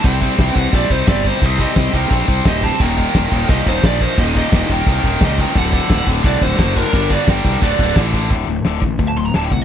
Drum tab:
CC |xxxxxxxx|xxxxxxxx|xxxxxxxx|xxxxxxxx|
HH |--------|--------|--------|--------|
SD |--o---o-|--o---o-|--o---o-|--o---o-|
BD |oooooooo|oooooooo|oooooooo|oooooooo|

CC |xxxxxxxx|xxxxxxxx|--------|
HH |--------|--------|oooooooo|
SD |--o---o-|--o---o-|--o---o-|
BD |oooooooo|oooooooo|o--oo--o|